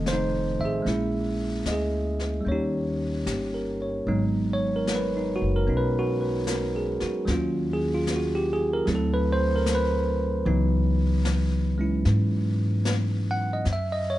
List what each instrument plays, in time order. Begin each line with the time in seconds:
Already playing: upright bass F1, tine electric piano D#3 F3 A3 C4 A4 D#5
0.06 tine electric piano C5, snare, hi-hat pedal
0.13 tine electric piano D#4
0.59 upright bass A1, tine electric piano E5
0.65 tine electric piano G#4
0.82 upright bass A#1, tine electric piano G#3 A#3 C#4, brush sweep, snare
0.87 tine electric piano E4
1.66 upright bass D2, tine electric piano D#5, snare, hi-hat pedal
1.72 tine electric piano G#4
2.19 snare
2.41 tine electric piano G3
2.45 upright bass D#2, tine electric piano A#3 C#4 C#5, brush sweep
2.52 tine electric piano D#4 G4
3.26 upright bass G1, tine electric piano G4, snare, hi-hat pedal
3.54 tine electric piano A#4
3.82 tine electric piano C#5
4.06 upright bass G#1, tine electric piano F#3 G#3 B3 D#4, brush sweep
4.53 tine electric piano C#5
4.76 tine electric piano A#4
4.87 snare, hi-hat pedal
4.95 tine electric piano B4
5.17 tine electric piano D#4
5.36 tine electric piano F#4
5.42 upright bass F#1
5.56 tine electric piano A#4
5.67 upright bass B1, tine electric piano B3 C#4 D#4, brush sweep
5.77 tine electric piano B4
5.99 tine electric piano F#4
6.21 tine electric piano B4
6.47 tine electric piano A#4, snare, hi-hat pedal
6.76 tine electric piano G#4
7.00 tine electric piano F#4, muted upright bass stroke, snare
7.25 upright bass D#2, tine electric piano F#3 A#3 C#4, brush sweep, snare
7.30 tine electric piano F4
7.73 tine electric piano G#4
7.94 tine electric piano F4
8.07 snare, hi-hat pedal
8.16 tine electric piano F#4
8.35 tine electric piano G4
8.53 tine electric piano G#4
8.74 tine electric piano A#4
8.86 upright bass D2, tine electric piano F#3 A3 C4 E4, brush sweep, snare
8.95 tine electric piano A4
9.14 tine electric piano B4
9.33 tine electric piano C5
9.56 tine electric piano A#4
9.66 snare, hi-hat pedal
9.75 tine electric piano B4
10.46 upright bass C#2, tine electric piano E3 F#3 B3 D#4, brush sweep
11.25 snare, hi-hat pedal
11.78 tine electric piano G#3 C#4 E4
12.05 upright bass G#2, brush sweep, snare
12.85 snare, hi-hat pedal
13.31 tine electric piano F#5
13.53 tine electric piano D#5
13.65 upright bass F#2, brush sweep, snare
13.73 tine electric piano E5
13.92 tine electric piano D#5
14.10 tine electric piano C#5